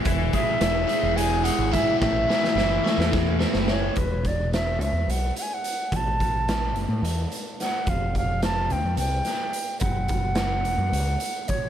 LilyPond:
<<
  \new Staff \with { instrumentName = "Flute" } { \time 7/8 \key a \major \tempo 4 = 108 r8 e''4. gis''8 fis''8 e''8 | e''2~ e''8 r8 cis''8 | b'8 d''8 e''8 e''8 fis''8 fis''32 gis''32 fis''8. | a''4. r4. fis''8 |
f''8 f''8 a''8 g''8 g''4. | fis''2. cis''8 | }
  \new Staff \with { instrumentName = "Overdriven electric guitar" } { \clef bass \time 7/8 \key a \major e8 gis8 e8 gis8 e8 gis8 e'8 | a,8 e8 e8 a8 e8 a8 e'8 | r2. r8 | r2. r8 |
r2. r8 | r2. r8 | }
  \new Staff \with { instrumentName = "Fingered electric bass" } { \clef bass \time 7/8 \key a \major e,,8 r8 e,,8 r16 e,,4 gis,,8 r16 | a,,8 r8 fis,,8 r16 e,4 fis,,8. | e,,4. cis,16 e,16 b,,8 r4 | a,,4. fis,,16 a,16 e,8 r4 |
f,,4. d,16 f,16 c,8 r4 | fis,,4. e,,16 fis,16 cis,8 r4 | }
  \new DrumStaff \with { instrumentName = "Drums" } \drummode { \time 7/8 <hh bd>8 <hh bd>8 <hh sn>8 hh8 hh8 hh8 <hh bd sn>8 | <bd sn>8 sn16 sn16 sn8 sn16 sn16 <bd sn>8 sn16 sn16 sn8 | <hh bd>8 <hh bd>8 <hh sn>8 hh8 hh8 hh8 hh8 | <hh bd>8 <hh bd>8 <hh sn>8 hh8 hh8 hh8 <hh sn>8 |
<hh bd>8 <hh bd>8 <hh sn>8 hh8 hh8 <hh sn>8 hh8 | <hh bd>8 <hh bd>8 <hh sn>8 hh8 hh8 hh8 <hh bd>8 | }
>>